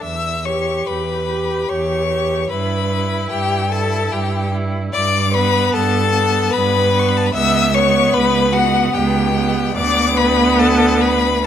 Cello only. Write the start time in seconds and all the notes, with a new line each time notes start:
0.03 E2
0.87 E2
1.70 E2
2.51 G2
3.31 G2
4.13 G2
4.95 G2
5.74 G2
6.54 G2
7.35 C#2
8.15 C#2
8.95 C#2
9.77 D2